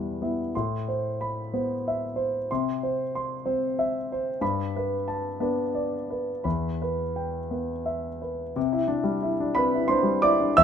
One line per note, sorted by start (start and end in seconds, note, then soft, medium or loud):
0.00 0.48 E2 soft
0.00 0.55 B2 soft
0.00 0.41 G3 soft
0.00 0.22 B3 soft
0.00 0.22 E4 soft
0.00 0.55 B4 medium
0.22 0.51 B3 soft
0.22 0.51 E4 soft
0.55 2.47 A2 soft
0.55 1.07 C6 soft
0.88 1.40 C5 soft
1.21 1.72 B5 soft
1.53 2.46 B3 soft
1.53 2.04 C5 soft
1.88 2.38 E5 soft
2.16 2.49 C5 soft
2.51 4.38 C3 medium
2.51 3.02 C6 soft
2.83 3.33 C5 soft
3.15 3.65 C6 soft
3.46 4.37 C4 soft
3.46 3.96 C5 soft
3.79 4.29 E5 medium
4.12 4.43 C5 soft
4.41 6.40 G2 medium
4.41 4.93 B5 medium
4.76 5.27 B4 medium
5.08 5.60 A5 soft
5.40 6.41 B3 soft
5.40 6.41 D4 soft
5.40 5.95 B4 soft
5.75 6.31 D5 soft
6.10 6.45 B4 soft
6.44 8.52 E2 soft
6.44 7.01 B5 soft
6.82 7.37 B4 soft
7.16 7.72 G5 soft
7.51 8.52 B3 soft
7.51 8.08 B4 soft
7.86 8.42 E5 soft
8.22 8.56 B4 soft
8.56 10.50 C3 medium
8.73 8.99 E4 medium
8.88 9.15 D4 soft
9.04 9.31 G3 soft
9.22 9.49 E4 soft
9.40 9.66 D4 soft
9.55 9.82 C4 soft
9.55 9.87 B4 medium
9.55 9.88 B5 medium
9.74 9.99 E4 soft
9.88 10.15 D4 soft
9.88 10.20 C5 medium
9.88 10.21 C6 medium
10.03 10.30 G3 soft
10.22 10.48 E4 medium
10.22 10.52 D5 medium
10.22 10.54 D6 medium
10.40 10.55 D4 soft
10.57 10.64 E2 medium
10.57 10.64 E5 medium
10.57 10.64 E6 loud